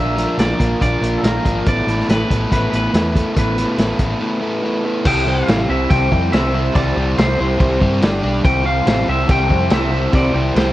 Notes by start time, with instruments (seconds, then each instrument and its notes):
Already playing: fingered electric bass A#1, overdriven electric guitar A#2 F3 A#3 D4 F4 A#4, clean electric guitar E5
0.17 overdriven electric guitar A#2 F3 A#3 D4 F4 A#4, snare, closed hi-hat
0.38 fingered electric bass A#1, overdriven electric guitar A#2 F3 A#3 D4 F4 A#4, clean electric guitar D5, snare, closed hi-hat
0.59 fingered electric bass A#1, overdriven electric guitar A#2 F3 A#3 D4 F4 A#4, kick, closed hi-hat
0.81 fingered electric bass A#1, overdriven electric guitar A#2 F3 A#3 D4 F4 A#4, clean electric guitar D5, kick, closed hi-hat
1.01 fingered electric bass A#1, overdriven electric guitar A#2 F3 A#3 D4 F4 A#4, closed hi-hat
1.18 clean electric guitar A4
1.23 fingered electric bass A#1, overdriven electric guitar A#2 F3 A#3 D4 F4 A#4, clean electric guitar A#4, snare, closed hi-hat
1.45 fingered electric bass G#1, overdriven electric guitar A#2 F3 A#3 D4 F4 A#4, kick, closed hi-hat
1.66 fingered electric bass A1, overdriven electric guitar A2 A3 B3 E4 A4 B4, clean electric guitar D5, kick, closed hi-hat
1.87 fingered electric bass A1, overdriven electric guitar A2 A3 B3 E4 A4 B4, snare, closed hi-hat
2.00 snare
2.08 fingered electric bass A1, overdriven electric guitar A2 A3 B3 E4 A4 B4, clean electric guitar B4, snare, closed hi-hat
2.29 fingered electric bass A1, overdriven electric guitar A2 A3 B3 E4 A4 B4, kick, closed hi-hat
2.51 fingered electric bass A1, overdriven electric guitar A2 A3 B3 E4 A4 B4, clean electric guitar B4, kick, closed hi-hat
2.72 fingered electric bass A1, overdriven electric guitar A2 A3 B3 E4 A4 B4, closed hi-hat
2.76 clean electric guitar B4
2.92 fingered electric bass E2, overdriven electric guitar A2 A3 B3 E4 A4 B4, snare, closed hi-hat
3.14 overdriven electric guitar A2 A3 B3 E4 A4 B4, kick, closed hi-hat
3.35 fingered electric bass A1, overdriven electric guitar A2 A3 B3 E4 A4 B4, clean electric guitar B4, kick, closed hi-hat
3.57 overdriven electric guitar A2 A3 B3 E4 A4 B4, snare, closed hi-hat
3.77 fingered electric bass A1, overdriven electric guitar A2 A3 B3 E4 A4 B4, snare, closed hi-hat
3.98 fingered electric bass A1, overdriven electric guitar A2 A3 B3 E4 A4 B4, kick, closed hi-hat
4.20 overdriven electric guitar A2 A3 B3 E4 A4 B4
4.41 overdriven electric guitar A2 A3 B3 E4 A4 B4
4.62 overdriven electric guitar A2 A3 B3 E4 A4 B4
4.83 overdriven electric guitar A2 A3 B3 E4 A4 B4
5.05 fingered electric bass C2, overdriven electric guitar C3 G3 C4 E4 G4 C5, string machine C5 G5 E6, clean electric guitar G5, kick, crash
5.26 overdriven electric guitar C3 G3 C4 E4 G4 C5, clean electric guitar F5
5.47 fingered electric bass A1, overdriven electric guitar C3 G3 C4 E4 G4 C5, snare, crash
5.69 fingered electric bass C2, overdriven electric guitar C3 G3 C4 E4 G4 C5, clean electric guitar E5
5.90 fingered electric bass C2, overdriven electric guitar C3 G3 C4 E4 G4 C5, clean electric guitar G5, kick, crash
6.11 fingered electric bass F2, overdriven electric guitar C3 G3 C4 E4 G4 C5, kick
6.32 fingered electric bass C2, overdriven electric guitar C3 G3 C4 E4 G4 C5, clean electric guitar E5, snare, crash
6.53 overdriven electric guitar C3 G3 C4 E4 G4 C5
6.74 fingered electric bass C2, overdriven electric guitar C3 G3 C4 E4 G4 C5, clean electric guitar D5, kick, crash
6.96 fingered electric bass C2, overdriven electric guitar C3 G3 C4 E4 G4 C5
7.16 fingered electric bass C2, overdriven electric guitar C3 G3 C4 E4 G4 C5, clean electric guitar C5, snare, crash
7.38 fingered electric bass C2, overdriven electric guitar C3 G3 C4 E4 G4 C5, clean electric guitar C5
7.58 fingered electric bass C2, overdriven electric guitar C3 G3 C4 E4 G4 C5, kick, crash
7.80 fingered electric bass G2, overdriven electric guitar C3 G3 C4 E4 G4 C5, kick
8.01 fingered electric bass G1, overdriven electric guitar G3 D4 G4 D5, string machine D5 D6, snare, crash
8.22 fingered electric bass B1, overdriven electric guitar G3 D4 G4 D5
8.43 fingered electric bass C2, overdriven electric guitar C3 G3 C4 E4 G4 C5, string machine C5 E6, clean electric guitar G5, kick, crash
8.64 overdriven electric guitar C3 G3 C4 E4 G4 C5, clean electric guitar F5
8.85 fingered electric bass A1, overdriven electric guitar C3 G3 C4 E4 G4 C5, snare, crash
9.07 fingered electric bass C2, overdriven electric guitar C3 G3 C4 E4 G4 C5, clean electric guitar E5
9.27 fingered electric bass C2, overdriven electric guitar C3 G3 C4 E4 G4 C5, kick, crash
9.31 clean electric guitar G5
9.49 fingered electric bass F2, overdriven electric guitar C3 G3 C4 E4 G4 C5, kick
9.70 fingered electric bass C2, overdriven electric guitar C3 G3 C4 E4 G4 C5, clean electric guitar E5, snare, crash
9.90 overdriven electric guitar C3 G3 C4 E4 G4 C5
10.12 fingered electric bass C2, overdriven electric guitar C3 G3 C4 E4 G4 C5, clean electric guitar D5, kick, crash
10.34 fingered electric bass C2, overdriven electric guitar C3 G3 C4 E4 G4 C5
10.55 fingered electric bass C2, overdriven electric guitar C3 G3 C4 E4 G4 C5, clean electric guitar C5, snare, crash